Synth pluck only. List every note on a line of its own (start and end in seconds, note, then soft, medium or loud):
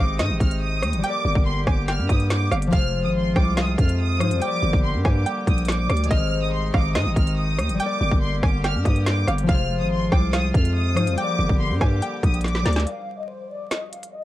0.00 0.18 F5 medium
0.19 0.59 D#5 medium
1.04 1.63 G5 loud
1.67 1.87 G#5 medium
1.88 2.48 G5 medium
2.52 2.72 F5 medium
2.73 3.32 F5 loud
3.36 3.56 G5 medium
3.57 3.97 F5 medium
4.42 5.01 G5 loud
5.05 5.25 G#5 medium
5.26 5.66 G5 medium
6.11 6.70 D#5 loud
6.74 6.94 F5 medium
6.95 7.35 D#5 medium
7.80 8.39 G5 loud
8.43 8.63 G#5 medium
8.64 9.24 G5 medium
9.28 9.48 F5 medium
9.49 10.08 F5 loud
10.12 10.32 G5 medium
10.33 10.73 F5 medium
11.18 11.77 G5 loud
11.81 12.01 G#5 medium
12.02 12.42 G5 medium